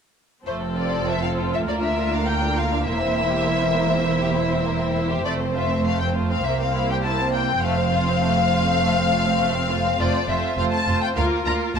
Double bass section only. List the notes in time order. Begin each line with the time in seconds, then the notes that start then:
0.47 F1
1.67 D2
2.86 E1
5.25 F1
6.44 C2
7.63 F1
9.99 F1
10.28 F1
10.57 F1
10.87 F1
11.16 D2
11.46 D2
11.75 D2